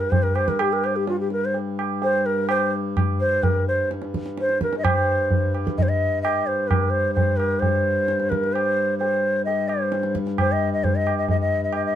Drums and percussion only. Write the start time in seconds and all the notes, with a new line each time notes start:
0.12 tabla tin, tabla ge
0.36 tabla na
0.48 tabla ke
0.59 tabla na
0.84 tabla na
1.07 tabla te
1.30 tabla te
1.54 tabla tin
1.79 tabla na
2.02 tabla tin
2.49 tabla na
2.97 tabla na, tabla ge
3.43 tabla tin, tabla ge
3.91 tabla te
4.02 tabla te
4.14 tabla ke
4.26 tabla te
4.37 tabla te
4.49 tabla te
4.61 tabla ke
4.73 tabla te
4.85 tabla na, tabla ge
5.31 tabla tin, tabla ge
5.55 tabla na
5.67 tabla ke
5.78 tabla tin, tabla ge
6.25 tabla na
6.71 tabla na, tabla ge
7.17 tabla tin, tabla ge
7.40 tabla na
7.62 tabla tin, tabla ge
8.08 tabla te
8.20 tabla te
8.32 tabla ke
8.44 tabla te
8.56 tabla na
9.01 tabla tin
9.47 tabla tin
9.69 tabla na
9.92 tabla te
10.03 tabla te
10.15 tabla ke
10.27 tabla te
10.38 tabla na, tabla ge
10.84 tabla tin, tabla ge
11.07 tabla na
11.28 tabla tin, tabla ge
11.73 tabla na